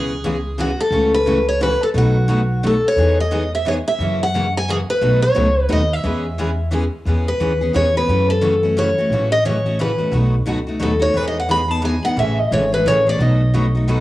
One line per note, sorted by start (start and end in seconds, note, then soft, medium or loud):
0.00 0.71 C#2 medium
0.00 0.11 C#3 medium
0.00 0.11 E3 medium
0.00 0.12 G#3 medium
0.00 0.11 B3 medium
0.00 0.12 C#4 medium
0.00 0.12 E4 medium
0.00 0.12 G#4 medium
0.00 0.62 G#4 medium
0.24 0.35 C#3 medium
0.24 0.35 E3 medium
0.24 0.36 G#3 medium
0.24 0.35 B3 medium
0.24 0.35 C#4 medium
0.24 0.36 E4 medium
0.24 0.35 G#4 medium
0.58 0.69 C#3 medium
0.58 0.69 E3 medium
0.58 0.69 G#3 medium
0.58 0.70 B3 medium
0.58 0.70 C#4 medium
0.58 0.70 E4 medium
0.58 0.79 F#4 medium
0.58 0.70 G#4 medium
0.80 1.14 A4 medium
0.91 1.73 C#2 medium
0.91 1.13 C#3 medium
0.91 1.13 E3 medium
0.91 1.13 F#3 medium
0.91 1.13 A3 medium
0.91 1.13 C#4 medium
0.91 1.14 E4 medium
0.91 1.13 F#4 medium
0.91 1.14 A4 medium
1.14 1.48 B4 medium
1.26 1.37 C#3 medium
1.26 1.38 E3 medium
1.26 1.38 F#3 medium
1.26 1.38 A3 medium
1.26 1.38 C#4 medium
1.26 1.38 E4 medium
1.26 1.38 F#4 medium
1.26 1.38 A4 medium
1.49 1.62 C#5 medium
1.61 1.72 C#3 medium
1.61 1.72 E3 medium
1.61 1.72 F#3 medium
1.61 1.72 A3 medium
1.61 1.72 C#4 medium
1.61 1.73 E4 medium
1.61 1.72 F#4 medium
1.61 1.73 A4 medium
1.61 1.83 B4 medium
1.83 1.88 A4 medium
1.94 2.76 B1 medium
1.94 2.15 B2 medium
1.94 2.15 F#3 medium
1.94 2.15 A3 medium
1.94 2.16 D#4 medium
1.94 2.16 F#4 medium
1.94 2.66 F#4 medium
1.94 2.16 B4 medium
2.28 2.39 B2 medium
2.28 2.39 F#3 medium
2.28 2.40 A3 medium
2.28 2.40 D#4 medium
2.28 2.40 F#4 medium
2.28 2.41 B4 medium
2.63 2.74 B2 medium
2.63 2.74 F#3 medium
2.63 2.74 A3 medium
2.63 2.74 D#4 medium
2.63 2.75 F#4 medium
2.63 2.86 A4 medium
2.63 2.75 B4 medium
2.88 3.20 C#5 medium
2.96 3.78 E2 medium
2.96 3.18 E3 medium
2.96 3.18 G#3 medium
2.96 3.19 B3 medium
2.96 3.18 D#4 medium
2.96 3.19 G#4 medium
3.20 3.51 D#5 medium
3.31 3.42 E3 medium
3.31 3.42 G#3 medium
3.31 3.42 B3 medium
3.31 3.43 D#4 medium
3.31 3.43 G#4 medium
3.55 3.66 E5 medium
3.65 3.76 E3 medium
3.65 3.77 G#3 medium
3.65 3.77 B3 medium
3.65 3.77 D#4 medium
3.65 3.77 G#4 medium
3.65 3.73 C#5 medium
3.88 4.21 E5 medium
3.99 4.81 F#2 medium
3.99 4.21 C#3 medium
3.99 4.21 E3 medium
3.99 4.20 F#3 medium
3.99 4.21 A#3 medium
3.99 4.21 C#4 medium
3.99 4.21 E4 medium
3.99 4.21 F#4 medium
3.99 4.21 A#4 medium
4.23 4.53 F#5 medium
4.34 4.45 C#3 medium
4.34 4.45 E3 medium
4.34 4.45 F#3 medium
4.34 4.46 A#3 medium
4.34 4.45 C#4 medium
4.34 4.45 E4 medium
4.34 4.46 F#4 medium
4.34 4.45 A#4 medium
4.57 4.68 G#5 medium
4.68 4.79 C#3 medium
4.68 4.79 E3 medium
4.68 4.79 F#3 medium
4.68 4.79 A#3 medium
4.68 4.80 C#4 medium
4.68 4.79 E4 loud
4.68 4.80 F#4 medium
4.68 4.76 G#4 medium
4.68 4.79 A#4 medium
4.90 5.22 B4 medium
5.01 5.29 B1 medium
5.01 5.22 B2 medium
5.01 5.22 F#3 medium
5.01 5.22 A3 medium
5.01 5.23 D#4 medium
5.01 5.23 F#4 medium
5.01 5.23 B4 medium
5.22 5.71 C#5 medium
5.34 5.65 C#2 medium
5.34 5.46 B2 medium
5.34 5.46 F#3 medium
5.34 5.46 A3 medium
5.34 5.47 D#4 medium
5.34 5.47 F#4 medium
5.34 5.47 B4 loud
5.69 5.99 D#2 loud
5.69 5.80 B2 medium
5.69 5.80 F#3 medium
5.69 5.80 A3 medium
5.69 5.81 D#4 medium
5.69 5.81 F#4 medium
5.69 5.81 B4 medium
5.69 5.93 D#5 medium
5.93 6.74 E5 loud
6.04 6.86 E2 loud
6.04 6.24 E3 medium
6.04 6.25 G#3 medium
6.04 6.24 B3 medium
6.04 6.25 C#4 medium
6.04 6.25 G#4 medium
6.04 6.26 B4 medium
6.38 6.49 E3 medium
6.38 6.50 G#3 medium
6.38 6.50 B3 medium
6.38 6.49 C#4 medium
6.38 6.49 G#4 medium
6.38 6.50 B4 medium
6.71 6.82 E3 medium
6.71 6.83 G#3 medium
6.71 6.83 B3 medium
6.71 6.83 C#4 medium
6.71 6.84 G#4 loud
6.71 6.84 B4 loud
7.05 7.33 E2 medium
7.05 7.27 E3 soft
7.05 7.28 G#3 medium
7.05 7.27 B3 medium
7.05 7.27 C#4 medium
7.05 7.27 G#4 medium
7.05 7.28 B4 medium
7.28 7.72 B4 medium
7.40 7.69 D#2 medium
7.40 7.51 E3 medium
7.40 7.51 G#3 medium
7.40 7.51 B3 medium
7.40 7.52 C#4 medium
7.40 7.52 G#4 medium
7.40 7.52 B4 medium
7.61 7.73 B3 soft
7.61 7.74 C#4 soft
7.61 7.74 G#4 medium
7.74 8.03 E2 medium
7.74 7.85 E3 medium
7.74 7.85 G#3 medium
7.74 7.85 B3 medium
7.74 7.86 C#4 medium
7.74 7.86 G#4 medium
7.74 7.86 B4 medium
7.74 7.95 C#5 medium
7.96 8.09 B3 soft
7.96 8.08 C#4 soft
7.96 8.08 G#4 medium
7.96 8.28 B4 medium
8.07 8.90 F#2 medium
8.07 8.29 C#3 medium
8.07 8.29 E3 medium
8.07 8.29 F#3 medium
8.07 8.30 A3 medium
8.07 8.30 C#4 medium
8.07 8.29 E4 medium
8.07 8.30 F#4 medium
8.07 8.30 A4 medium
8.30 8.61 A4 medium
8.41 8.53 C#3 medium
8.41 8.53 E3 medium
8.41 8.53 F#3 medium
8.41 8.53 A3 medium
8.41 8.53 C#4 medium
8.41 8.54 E4 medium
8.41 8.54 F#4 medium
8.41 8.54 A4 medium
8.63 8.77 A3 soft
8.63 8.77 C#4 medium
8.63 8.76 F#4 medium
8.77 8.88 C#3 medium
8.77 8.88 E3 medium
8.77 8.88 F#3 medium
8.77 8.88 A3 medium
8.77 8.88 C#4 medium
8.77 8.89 E4 loud
8.77 8.88 F#4 medium
8.77 8.89 A4 medium
8.77 9.29 C#5 medium
8.98 9.12 A3 medium
8.98 9.11 C#4 medium
8.98 9.11 F#4 medium
9.10 9.92 A1 medium
9.10 9.32 C#3 medium
9.10 9.32 E3 medium
9.10 9.33 F#3 medium
9.10 9.33 A3 medium
9.10 9.32 C#4 medium
9.10 9.33 E4 medium
9.10 9.33 F#4 medium
9.32 9.45 D#5 medium
9.45 9.56 C#3 medium
9.45 9.56 E3 medium
9.45 9.56 F#3 medium
9.45 9.56 A3 medium
9.45 9.56 C#4 medium
9.45 9.57 E4 medium
9.45 9.57 F#4 medium
9.45 9.77 C#5 medium
9.66 9.78 A3 soft
9.66 9.79 C#4 medium
9.66 9.79 F#4 medium
9.79 9.90 C#3 medium
9.79 9.90 E3 medium
9.79 9.91 F#3 medium
9.79 9.90 A3 medium
9.79 9.90 C#4 medium
9.79 9.91 E4 medium
9.79 9.90 F#4 medium
9.79 10.12 B4 medium
9.98 10.12 A3 soft
9.98 10.12 C#4 medium
9.98 10.12 F#4 medium
10.12 10.40 B1 medium
10.12 10.33 B2 medium
10.12 10.34 F#3 medium
10.12 10.34 A3 medium
10.12 10.34 D#4 medium
10.12 10.34 F#4 medium
10.12 10.35 B4 medium
10.46 10.76 C#2 medium
10.46 10.57 B2 medium
10.46 10.58 F#3 medium
10.46 10.58 A3 medium
10.46 10.58 D#4 medium
10.46 10.58 F#4 medium
10.46 10.59 B4 medium
10.67 10.79 A3 soft
10.67 10.79 D#4 soft
10.67 10.79 F#4 medium
10.80 11.10 D#2 medium
10.80 10.92 B2 medium
10.80 10.91 F#3 medium
10.80 10.92 A3 medium
10.80 10.92 D#4 medium
10.80 10.92 F#4 medium
10.80 11.02 A4 medium
10.80 10.93 B4 medium
10.99 11.13 A3 soft
10.99 11.13 D#4 soft
10.99 11.14 F#4 medium
10.99 11.17 C#5 medium
11.14 11.96 E2 medium
11.14 11.35 E3 medium
11.14 11.37 G#3 medium
11.14 11.35 B3 medium
11.14 11.35 D#4 medium
11.14 11.36 G#4 medium
11.14 11.27 B4 medium
11.27 11.38 D#5 medium
11.39 11.50 F#5 medium
11.49 11.60 E3 medium
11.49 11.61 G#3 medium
11.49 11.60 B3 medium
11.49 11.60 D#4 medium
11.49 11.60 G#4 medium
11.49 11.71 B5 loud
11.68 11.81 B3 soft
11.68 11.81 D#4 soft
11.68 11.81 G#4 medium
11.68 11.83 A5 medium
11.82 11.94 E3 medium
11.82 11.95 G#3 medium
11.82 11.94 B3 medium
11.82 11.94 D#4 medium
11.82 11.94 G#4 medium
11.82 12.04 G#5 medium
12.03 12.16 B3 medium
12.03 12.17 D#4 soft
12.03 12.16 G#4 medium
12.03 12.17 F#5 medium
12.16 12.44 A1 medium
12.16 12.38 C#3 medium
12.16 12.38 E3 medium
12.16 12.39 G#3 medium
12.16 12.38 A3 medium
12.16 12.38 C#4 medium
12.16 12.40 E4 medium
12.16 12.38 G#4 medium
12.16 12.39 A4 medium
12.16 12.40 E5 medium
12.40 12.52 D#5 medium
12.51 12.80 G#1 medium
12.51 12.63 C#3 medium
12.51 12.63 E3 medium
12.51 12.63 G#3 medium
12.51 12.63 A3 medium
12.51 12.63 C#4 medium
12.51 12.64 E4 medium
12.51 12.63 G#4 medium
12.51 12.64 A4 medium
12.51 12.73 C#5 medium
12.72 12.85 A3 soft
12.72 12.85 C#4 soft
12.72 12.85 G#4 medium
12.72 12.88 B4 medium
12.85 13.14 A1 medium
12.85 12.96 C#3 medium
12.85 12.97 E3 medium
12.85 12.97 G#3 medium
12.85 12.97 A3 medium
12.85 12.97 C#4 medium
12.85 12.97 E4 medium
12.85 12.97 G#4 medium
12.85 12.98 A4 loud
12.85 13.07 C#5 medium
13.06 13.19 A3 soft
13.06 13.20 C#4 medium
13.06 13.19 G#4 medium
13.06 13.23 D5 medium
13.19 14.00 B1 medium
13.19 13.41 B2 medium
13.19 13.41 F#3 medium
13.19 13.41 A3 medium
13.19 13.41 D#4 medium
13.19 13.41 F#4 medium
13.19 13.41 B4 medium
13.19 14.00 D#5 medium
13.53 13.65 B2 medium
13.53 13.65 F#3 medium
13.53 13.65 A3 medium
13.53 13.66 D#4 medium
13.53 13.65 F#4 medium
13.53 13.65 B4 medium
13.75 13.88 A3 medium
13.75 13.88 D#4 soft
13.75 13.88 F#4 medium
13.88 13.99 B2 medium
13.88 13.99 F#3 medium
13.88 13.99 A3 medium
13.88 13.99 D#4 medium
13.88 14.00 F#4 medium
13.88 14.00 B4 medium